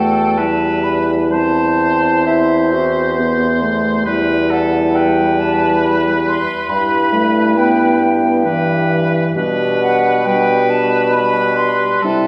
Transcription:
Already playing: E2 A3 F#4 A4 G5
0.38 G3 E4 B4 A5
0.84 B5
1.31 C4 C5 A5
2.25 E4 C5 E5
2.72 F#4
3.17 B3 G4
3.62 A3
4.06 E2 G3 E4 B4
4.51 A4 F#5
4.95 B4 G5
5.40 A5
5.83 B5
6.28 C6
6.69 G2 G3 E4 B5
7.12 A3
7.57 B3 G5
8.01 B3
8.44 E3 G4 B4
9.36 B2 G3 D4 B4
9.82 F#5
10.25 G3 B4 G5
10.29 D4
10.70 A5
11.12 G3 D4 B5
11.16 B4
11.57 C6
12.03 C3 G3 E4 A4

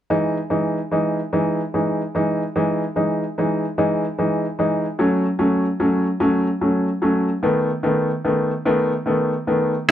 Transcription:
0.10 E3 G#3 D#4
0.50 E3 G#3 D#4
0.91 E3 G#3 D#4
1.33 E3 G#3 D#4
1.74 E3 G#3 D#4
2.15 E3 G#3 D#4
2.56 E3 G#3 D#4
2.96 E3 G#3 D#4
3.38 E3 G#3 D#4
3.78 E3 G#3 D#4
4.18 E3 G#3 D#4
4.59 E3 G#3 D#4
4.99 F#3 A3 C#4
5.39 F#3 A3 C#4
5.80 F#3 A3 C#4
6.20 F#3 A3 C#4
6.61 F#3 A3 C#4
7.02 F#3 A3 C#4
7.43 D#3 A3 B3
7.83 D#3 A3 B3
8.25 D#3 A3 B3
8.65 D#3 A3 B3
9.06 D#3 A3 B3
9.47 D#3 A3 B3

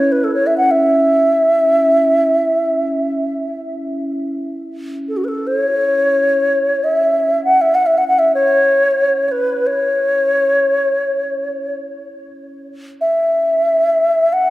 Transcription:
Already playing: C#4 E4 C#5
0.12 B4
0.24 A4
0.34 C#5
0.47 E5
0.58 F#5
0.71 E5
5.09 A4
5.17 F#4
5.24 A4 B4
5.47 C#5
6.84 E5
7.45 F#5
7.61 E5
7.75 F#5
7.86 E5
7.98 F#5
8.08 F#5
8.19 E5
8.35 C#5
9.28 B4 C#5
9.67 C#5
13.01 E5
14.33 F#5

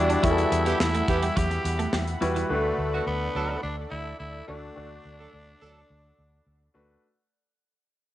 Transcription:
Already playing: E2 G3 D4 E4 F#4 D5 E5 F#5 B5
0.09 D4, closed hi-hat
0.23 E2 E3 G3 E4 F#4 G#4, kick, closed hi-hat
0.31 A4
0.38 closed hi-hat
0.52 E2, muted clean electric guitar stroke, closed hi-hat
0.66 E3 B3 G4, closed hi-hat
0.80 E2 E4, snare
0.95 A3, closed hi-hat
1.08 E2 E3 B3 G4, muted clean electric guitar stroke, kick, closed hi-hat
1.22 G3, closed hi-hat
1.37 E2 F#3 G4, kick, closed hi-hat
1.51 muted clean electric guitar stroke, closed hi-hat
1.65 E2, closed hi-hat
1.79 A3, closed hi-hat
1.93 E2 G3, snare
2.08 closed hi-hat
2.21 E2 G3 E4 F#4 B4, muted clean electric guitar stroke, closed hi-hat
2.36 E3, closed hi-hat
2.49 D2 D3 A3 D4 F#4 A4 B4 D5
2.78 D2
2.93 D3 B3 F#4
3.07 D2 B3
3.35 D2 F#3 D4 A4
3.63 D2 D4
3.90 D2 E4
4.19 D2 E4
4.47 D2 A3 D4 F#4 D5
4.75 D2 D3 A3 D4 F#4 D5
5.05 D2
5.19 F#3 D4 A4
5.33 D2
5.61 D2 F#3 D4 A4
5.90 D2
6.18 D2
6.46 D2
6.74 D2 A3 D4 F#4 B4

